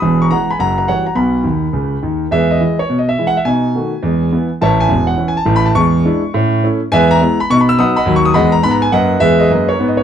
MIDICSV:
0, 0, Header, 1, 2, 480
1, 0, Start_track
1, 0, Key_signature, 4, "major"
1, 0, Tempo, 287081
1, 25, Time_signature, 4, 2, 24, 8
1, 11552, Key_signature, 5, "major"
1, 16774, End_track
2, 0, Start_track
2, 0, Title_t, "Grand piano"
2, 0, Program_c, 0, 0
2, 0, Note_on_c, 0, 83, 65
2, 0, Note_on_c, 0, 87, 88
2, 35, Note_on_c, 0, 28, 69
2, 36, Note_on_c, 0, 40, 74
2, 280, Control_c, 0, 64, 127
2, 329, Note_off_c, 0, 83, 0
2, 353, Note_off_c, 0, 87, 0
2, 362, Note_on_c, 0, 85, 73
2, 380, Note_on_c, 0, 82, 55
2, 439, Note_off_c, 0, 28, 0
2, 440, Note_off_c, 0, 40, 0
2, 487, Note_off_c, 0, 82, 0
2, 511, Note_on_c, 0, 52, 40
2, 512, Note_on_c, 0, 82, 84
2, 516, Note_off_c, 0, 85, 0
2, 517, Note_on_c, 0, 56, 42
2, 528, Note_on_c, 0, 68, 48
2, 530, Control_c, 0, 64, 0
2, 539, Note_on_c, 0, 78, 64
2, 774, Note_off_c, 0, 52, 0
2, 778, Note_off_c, 0, 56, 0
2, 786, Note_off_c, 0, 68, 0
2, 818, Note_off_c, 0, 78, 0
2, 825, Note_off_c, 0, 82, 0
2, 843, Note_on_c, 0, 83, 78
2, 873, Note_on_c, 0, 80, 55
2, 987, Note_on_c, 0, 42, 67
2, 996, Note_off_c, 0, 83, 0
2, 999, Note_on_c, 0, 30, 66
2, 1002, Note_off_c, 0, 80, 0
2, 1003, Note_on_c, 0, 82, 89
2, 1009, Note_on_c, 0, 78, 59
2, 1255, Control_c, 0, 64, 127
2, 1277, Note_off_c, 0, 82, 0
2, 1290, Note_off_c, 0, 78, 0
2, 1302, Note_on_c, 0, 82, 72
2, 1315, Note_on_c, 0, 78, 53
2, 1395, Note_off_c, 0, 42, 0
2, 1402, Note_off_c, 0, 30, 0
2, 1448, Note_off_c, 0, 78, 0
2, 1466, Note_off_c, 0, 82, 0
2, 1466, Note_on_c, 0, 52, 37
2, 1473, Note_on_c, 0, 78, 81
2, 1482, Note_on_c, 0, 55, 38
2, 1482, Note_on_c, 0, 66, 43
2, 1483, Control_c, 0, 64, 0
2, 1493, Note_on_c, 0, 73, 57
2, 1730, Note_off_c, 0, 52, 0
2, 1742, Note_off_c, 0, 55, 0
2, 1742, Note_off_c, 0, 66, 0
2, 1770, Note_off_c, 0, 78, 0
2, 1775, Note_off_c, 0, 73, 0
2, 1777, Note_on_c, 0, 82, 65
2, 1795, Note_on_c, 0, 78, 51
2, 1920, Note_off_c, 0, 78, 0
2, 1924, Note_on_c, 0, 35, 61
2, 1924, Note_on_c, 0, 47, 63
2, 1931, Note_on_c, 0, 83, 77
2, 1944, Note_off_c, 0, 82, 0
2, 1945, Note_on_c, 0, 78, 54
2, 2211, Control_c, 0, 64, 127
2, 2342, Note_off_c, 0, 35, 0
2, 2342, Note_off_c, 0, 47, 0
2, 2400, Note_on_c, 0, 51, 53
2, 2411, Note_on_c, 0, 39, 60
2, 2445, Control_c, 0, 64, 0
2, 2770, Note_off_c, 0, 51, 0
2, 2777, Note_off_c, 0, 39, 0
2, 2894, Note_on_c, 0, 49, 58
2, 2898, Note_on_c, 0, 37, 54
2, 3259, Note_off_c, 0, 49, 0
2, 3262, Note_off_c, 0, 37, 0
2, 3320, Note_off_c, 0, 78, 0
2, 3380, Note_off_c, 0, 83, 0
2, 3387, Note_on_c, 0, 51, 58
2, 3391, Note_on_c, 0, 39, 58
2, 3748, Note_off_c, 0, 51, 0
2, 3750, Note_off_c, 0, 39, 0
2, 3867, Note_on_c, 0, 40, 69
2, 3877, Note_on_c, 0, 76, 89
2, 3886, Note_on_c, 0, 68, 68
2, 3892, Note_on_c, 0, 71, 64
2, 3902, Note_on_c, 0, 56, 50
2, 4140, Control_c, 0, 64, 127
2, 4156, Note_off_c, 0, 56, 0
2, 4172, Note_off_c, 0, 68, 0
2, 4175, Note_off_c, 0, 71, 0
2, 4189, Note_off_c, 0, 76, 0
2, 4194, Note_on_c, 0, 75, 77
2, 4275, Note_off_c, 0, 40, 0
2, 4347, Note_on_c, 0, 52, 42
2, 4355, Note_on_c, 0, 56, 39
2, 4362, Control_c, 0, 64, 0
2, 4366, Note_on_c, 0, 64, 43
2, 4612, Note_off_c, 0, 52, 0
2, 4617, Note_off_c, 0, 56, 0
2, 4625, Note_off_c, 0, 64, 0
2, 4670, Note_off_c, 0, 75, 0
2, 4670, Note_on_c, 0, 73, 76
2, 4842, Note_on_c, 0, 47, 62
2, 4991, Note_off_c, 0, 73, 0
2, 4994, Note_on_c, 0, 75, 67
2, 5151, Note_off_c, 0, 75, 0
2, 5160, Note_on_c, 0, 76, 78
2, 5244, Note_off_c, 0, 47, 0
2, 5323, Note_on_c, 0, 52, 38
2, 5326, Note_on_c, 0, 56, 40
2, 5332, Note_on_c, 0, 64, 46
2, 5469, Note_on_c, 0, 78, 88
2, 5475, Note_off_c, 0, 76, 0
2, 5583, Note_off_c, 0, 52, 0
2, 5586, Note_off_c, 0, 56, 0
2, 5590, Note_off_c, 0, 64, 0
2, 5629, Note_off_c, 0, 78, 0
2, 5635, Note_on_c, 0, 76, 73
2, 5771, Note_on_c, 0, 47, 67
2, 5771, Note_on_c, 0, 80, 90
2, 5792, Note_off_c, 0, 76, 0
2, 5813, Note_on_c, 0, 63, 52
2, 6060, Control_c, 0, 64, 127
2, 6071, Note_off_c, 0, 63, 0
2, 6187, Note_off_c, 0, 47, 0
2, 6273, Note_on_c, 0, 51, 46
2, 6278, Note_on_c, 0, 57, 46
2, 6285, Control_c, 0, 64, 0
2, 6287, Note_on_c, 0, 66, 46
2, 6536, Note_off_c, 0, 51, 0
2, 6540, Note_off_c, 0, 57, 0
2, 6546, Note_off_c, 0, 66, 0
2, 6732, Note_on_c, 0, 40, 73
2, 6774, Note_on_c, 0, 56, 46
2, 7025, Control_c, 0, 64, 127
2, 7031, Note_off_c, 0, 56, 0
2, 7148, Note_off_c, 0, 40, 0
2, 7230, Note_on_c, 0, 52, 41
2, 7230, Note_on_c, 0, 59, 53
2, 7234, Note_on_c, 0, 64, 46
2, 7243, Control_c, 0, 64, 0
2, 7494, Note_off_c, 0, 52, 0
2, 7495, Note_off_c, 0, 59, 0
2, 7497, Note_off_c, 0, 64, 0
2, 7538, Note_off_c, 0, 80, 0
2, 7715, Note_on_c, 0, 45, 74
2, 7719, Note_on_c, 0, 81, 103
2, 7721, Note_on_c, 0, 33, 72
2, 7734, Note_on_c, 0, 76, 75
2, 7744, Note_on_c, 0, 73, 71
2, 7971, Control_c, 0, 64, 127
2, 8018, Note_off_c, 0, 76, 0
2, 8023, Note_off_c, 0, 73, 0
2, 8031, Note_off_c, 0, 81, 0
2, 8034, Note_on_c, 0, 80, 94
2, 8098, Note_off_c, 0, 45, 0
2, 8101, Note_off_c, 0, 33, 0
2, 8173, Note_on_c, 0, 40, 67
2, 8177, Note_on_c, 0, 28, 72
2, 8213, Control_c, 0, 64, 0
2, 8477, Note_on_c, 0, 78, 83
2, 8511, Note_off_c, 0, 80, 0
2, 8564, Note_off_c, 0, 40, 0
2, 8567, Note_off_c, 0, 28, 0
2, 8652, Note_on_c, 0, 64, 48
2, 8655, Note_on_c, 0, 52, 47
2, 8656, Note_on_c, 0, 61, 48
2, 8816, Note_off_c, 0, 78, 0
2, 8831, Note_on_c, 0, 80, 82
2, 8922, Note_off_c, 0, 64, 0
2, 8923, Note_off_c, 0, 52, 0
2, 8925, Note_off_c, 0, 61, 0
2, 8980, Note_on_c, 0, 81, 91
2, 8992, Note_off_c, 0, 80, 0
2, 9122, Note_on_c, 0, 33, 75
2, 9128, Note_on_c, 0, 45, 78
2, 9294, Note_on_c, 0, 83, 99
2, 9306, Note_off_c, 0, 81, 0
2, 9457, Note_on_c, 0, 81, 86
2, 9463, Note_off_c, 0, 83, 0
2, 9518, Note_off_c, 0, 33, 0
2, 9522, Note_off_c, 0, 45, 0
2, 9613, Note_on_c, 0, 40, 83
2, 9618, Note_on_c, 0, 85, 100
2, 9625, Note_off_c, 0, 81, 0
2, 9652, Note_on_c, 0, 56, 51
2, 9907, Control_c, 0, 64, 127
2, 9910, Note_off_c, 0, 56, 0
2, 10029, Note_off_c, 0, 40, 0
2, 10116, Note_on_c, 0, 56, 51
2, 10120, Note_on_c, 0, 62, 54
2, 10126, Control_c, 0, 64, 0
2, 10128, Note_on_c, 0, 64, 59
2, 10379, Note_off_c, 0, 56, 0
2, 10382, Note_off_c, 0, 62, 0
2, 10388, Note_off_c, 0, 64, 0
2, 10602, Note_on_c, 0, 45, 88
2, 10642, Note_on_c, 0, 61, 59
2, 10855, Control_c, 0, 64, 127
2, 10893, Note_off_c, 0, 61, 0
2, 11006, Note_off_c, 0, 45, 0
2, 11093, Control_c, 0, 64, 0
2, 11095, Note_on_c, 0, 57, 53
2, 11099, Note_on_c, 0, 61, 58
2, 11110, Note_on_c, 0, 64, 62
2, 11353, Note_off_c, 0, 57, 0
2, 11356, Note_off_c, 0, 61, 0
2, 11364, Note_off_c, 0, 64, 0
2, 11381, Note_off_c, 0, 85, 0
2, 11566, Note_on_c, 0, 80, 116
2, 11574, Note_on_c, 0, 40, 92
2, 11590, Note_on_c, 0, 76, 92
2, 11598, Note_on_c, 0, 71, 90
2, 11601, Note_on_c, 0, 56, 63
2, 11823, Control_c, 0, 64, 127
2, 11851, Note_off_c, 0, 56, 0
2, 11867, Note_off_c, 0, 76, 0
2, 11871, Note_off_c, 0, 71, 0
2, 11876, Note_off_c, 0, 80, 0
2, 11885, Note_on_c, 0, 82, 109
2, 11973, Note_off_c, 0, 40, 0
2, 12047, Control_c, 0, 64, 0
2, 12057, Note_on_c, 0, 56, 59
2, 12066, Note_on_c, 0, 59, 54
2, 12071, Note_on_c, 0, 64, 64
2, 12314, Note_off_c, 0, 56, 0
2, 12320, Note_off_c, 0, 59, 0
2, 12324, Note_off_c, 0, 64, 0
2, 12357, Note_off_c, 0, 82, 0
2, 12377, Note_on_c, 0, 83, 93
2, 12526, Note_off_c, 0, 83, 0
2, 12541, Note_on_c, 0, 47, 90
2, 12549, Note_on_c, 0, 85, 109
2, 12580, Note_on_c, 0, 63, 61
2, 12690, Note_off_c, 0, 85, 0
2, 12718, Note_on_c, 0, 83, 83
2, 12785, Control_c, 0, 64, 127
2, 12825, Note_off_c, 0, 63, 0
2, 12855, Note_off_c, 0, 83, 0
2, 12857, Note_on_c, 0, 88, 107
2, 12936, Note_off_c, 0, 47, 0
2, 13004, Note_off_c, 0, 88, 0
2, 13005, Control_c, 0, 64, 0
2, 13012, Note_on_c, 0, 54, 57
2, 13018, Note_on_c, 0, 59, 53
2, 13018, Note_on_c, 0, 87, 99
2, 13035, Note_on_c, 0, 63, 56
2, 13038, Note_on_c, 0, 83, 73
2, 13042, Note_on_c, 0, 78, 78
2, 13270, Note_off_c, 0, 54, 0
2, 13274, Note_off_c, 0, 59, 0
2, 13287, Note_off_c, 0, 63, 0
2, 13291, Note_off_c, 0, 83, 0
2, 13312, Note_off_c, 0, 78, 0
2, 13316, Note_on_c, 0, 83, 91
2, 13321, Note_off_c, 0, 87, 0
2, 13338, Note_on_c, 0, 78, 68
2, 13345, Note_on_c, 0, 75, 69
2, 13470, Note_on_c, 0, 39, 89
2, 13495, Note_on_c, 0, 54, 83
2, 13624, Note_off_c, 0, 78, 0
2, 13628, Note_off_c, 0, 75, 0
2, 13635, Note_off_c, 0, 83, 0
2, 13644, Note_on_c, 0, 85, 97
2, 13732, Control_c, 0, 64, 127
2, 13797, Note_off_c, 0, 85, 0
2, 13801, Note_on_c, 0, 87, 100
2, 13853, Note_off_c, 0, 39, 0
2, 13868, Note_off_c, 0, 54, 0
2, 13946, Note_on_c, 0, 83, 96
2, 13950, Note_on_c, 0, 40, 78
2, 13955, Note_off_c, 0, 87, 0
2, 13965, Note_on_c, 0, 78, 87
2, 13970, Control_c, 0, 64, 0
2, 13971, Note_on_c, 0, 75, 84
2, 13974, Note_on_c, 0, 56, 83
2, 14248, Note_on_c, 0, 82, 100
2, 14251, Note_off_c, 0, 78, 0
2, 14254, Note_off_c, 0, 75, 0
2, 14263, Note_off_c, 0, 83, 0
2, 14333, Note_off_c, 0, 40, 0
2, 14347, Note_off_c, 0, 56, 0
2, 14420, Note_off_c, 0, 82, 0
2, 14426, Note_on_c, 0, 44, 77
2, 14436, Note_on_c, 0, 83, 111
2, 14462, Note_on_c, 0, 59, 73
2, 14564, Note_on_c, 0, 82, 89
2, 14592, Note_off_c, 0, 83, 0
2, 14736, Note_off_c, 0, 82, 0
2, 14747, Note_on_c, 0, 80, 96
2, 14810, Note_off_c, 0, 44, 0
2, 14831, Note_off_c, 0, 59, 0
2, 14907, Note_off_c, 0, 80, 0
2, 14918, Note_on_c, 0, 78, 93
2, 14921, Note_on_c, 0, 42, 84
2, 14937, Note_on_c, 0, 75, 72
2, 14938, Note_on_c, 0, 71, 74
2, 14946, Note_on_c, 0, 58, 74
2, 15298, Note_off_c, 0, 42, 0
2, 15313, Note_off_c, 0, 58, 0
2, 15368, Note_off_c, 0, 75, 0
2, 15369, Note_off_c, 0, 71, 0
2, 15384, Note_on_c, 0, 40, 71
2, 15385, Note_on_c, 0, 76, 106
2, 15391, Note_off_c, 0, 78, 0
2, 15409, Note_on_c, 0, 68, 78
2, 15409, Note_on_c, 0, 71, 82
2, 15413, Note_on_c, 0, 56, 75
2, 15657, Control_c, 0, 64, 127
2, 15691, Note_off_c, 0, 71, 0
2, 15692, Note_off_c, 0, 68, 0
2, 15701, Note_off_c, 0, 76, 0
2, 15712, Note_on_c, 0, 75, 85
2, 15735, Note_on_c, 0, 71, 67
2, 15739, Note_on_c, 0, 68, 65
2, 15768, Note_off_c, 0, 40, 0
2, 15785, Note_off_c, 0, 56, 0
2, 15878, Control_c, 0, 64, 0
2, 15890, Note_on_c, 0, 42, 71
2, 15919, Note_on_c, 0, 58, 67
2, 16164, Note_off_c, 0, 71, 0
2, 16166, Note_off_c, 0, 68, 0
2, 16185, Note_off_c, 0, 75, 0
2, 16195, Note_on_c, 0, 73, 84
2, 16262, Note_off_c, 0, 42, 0
2, 16280, Note_off_c, 0, 58, 0
2, 16363, Note_on_c, 0, 44, 67
2, 16388, Note_on_c, 0, 59, 70
2, 16510, Note_off_c, 0, 73, 0
2, 16525, Note_on_c, 0, 75, 61
2, 16673, Note_off_c, 0, 75, 0
2, 16675, Note_on_c, 0, 73, 76
2, 16737, Note_off_c, 0, 44, 0
2, 16752, Note_off_c, 0, 59, 0
2, 16774, Note_off_c, 0, 73, 0
2, 16774, End_track
0, 0, End_of_file